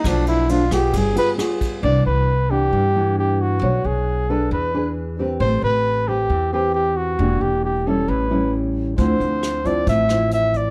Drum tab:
RD |xxxxxxxx|--------|--------|--------|
HH |--------|--------|--------|--------|
SD |r--r--r-|--------|--------|--------|
BD |o--oo--o|--------|--------|--------|

RD |--------|--------|
HH |--------|xxxxxxxx|
SD |--------|--r--r--|
BD |--------|o--oo--o|